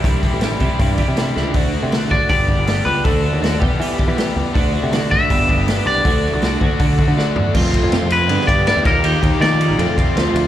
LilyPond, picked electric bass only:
\new Staff \with { instrumentName = "Picked electric bass" } { \clef bass \time 4/4 \key d \mixolydian \tempo 4 = 160 c,8. a,,8. c16 r16 g,8. c8. cis,8 | d,8. c8 r16 a,,16 r16 g,,8. g,,8. cis,8 | d,8. ees,8. e,16 r16 e8. e8 r16 cis,16 r16 | d,8. c8 r16 a,,16 r16 g,,8. g,,8. c,8 |
d,8. c,8. d,16 r16 d8. d8 r16 e,16 r16 | f,8 r16 f,8 f,8. g,16 r16 g,8. e,16 ees,8~ | ees,8 ees,16 r16 ees8. bes,,16 f,16 f,8. d,16 r16 d,8 | }